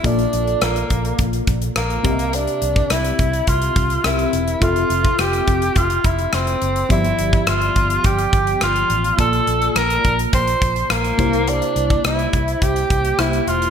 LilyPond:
<<
  \new Staff \with { instrumentName = "FM electric piano" } { \time 4/4 \key c \major \tempo 4 = 105 <bes f' a' d''>2.~ <bes f' a' d''>8 <c' g' bes' ees'' e''>8~ | <c' g' bes' ees'' e''>2. <c' g' bes' e''>4 | <c' f' a' e''>1 | <f b g' d''>1 |
<bes f' d'' a''>2.~ <bes f' d'' a''>8 <bes e' g' c''>8~ | <bes e' g' c''>2. <bes e' g' c''>4 | }
  \new Staff \with { instrumentName = "FM electric piano" } { \clef bass \time 4/4 \key c \major bes,4. r2 c8~ | c4 r2. | r1 | g,4. r2 r8 |
bes,4. r2 c8~ | c4 r2. | }
  \new Staff \with { instrumentName = "Tenor saxophone" } { \time 4/4 \key c \major d'4 bes4 r4 bes4 | d'4 e'4 f'4 e'4 | f'4 g'4 f'8 e'8 c'4 | e'4 f'4 g'4 f'4 |
a'4 bes'4 c''4 bes4 | d'4 e'4 g'4 e'8 f'8 | }
  \new Staff \with { instrumentName = "Fingered electric bass" } { \clef bass \time 4/4 \key c \major bes,,8 bes,,8 bes,,8 bes,,8 bes,,8 bes,,8 bes,,8 c,8~ | c,8 c,8 c,8 c,8 c,8 c,8 c,8 e,,8 | f,,8 f,,8 f,,8 f,,8 f,,8 f,,8 f,,8 fis,,8 | g,,8 g,,8 g,,8 g,,8 g,,8 g,,8 g,,8 a,,8 |
bes,,8 bes,,8 bes,,8 bes,,8 bes,,8 bes,,8 bes,,8 c,8~ | c,8 c,8 c,8 c,8 c,8 c,8 c,8 e,,8 | }
  \new DrumStaff \with { instrumentName = "Drums" } \drummode { \time 4/4 <hh bd>16 hh16 hh16 hh16 <hh ss>16 hh16 <hh bd>16 hh16 <hh bd>16 hh16 <hh bd>16 hh16 <hh ss>16 hh16 <hh bd>16 hh16 | hh16 hh16 hh16 <hh bd>16 <hh ss>16 hh16 <hh bd>16 hh16 <hh bd>16 hh16 <hh bd>16 hh16 <hh ss>16 hh16 hh16 hh16 | <hh bd>16 hh16 hh16 <hh bd>16 <hh ss>16 hh16 <hh bd>16 hh16 <hh bd>16 hh16 <hh bd>16 hh16 <hh ss>16 hh16 hh16 hh16 | <hh bd>16 hh16 hh16 <hh bd>16 <hh ss>16 hh16 <hh bd>16 hh16 <hh bd>16 hh16 <hh bd>16 hh16 <hh ss>16 hh16 hh16 hh16 |
<hh bd>16 hh16 hh16 hh16 <hh ss>16 hh16 <hh bd>16 hh16 <hh bd>16 hh16 <hh bd>16 hh16 <hh ss>16 hh16 <hh bd>16 hh16 | hh16 hh16 hh16 <hh bd>16 <hh ss>16 hh16 <hh bd>16 hh16 <hh bd>16 hh16 <hh bd>16 hh16 <hh ss>16 hh16 hh16 hh16 | }
>>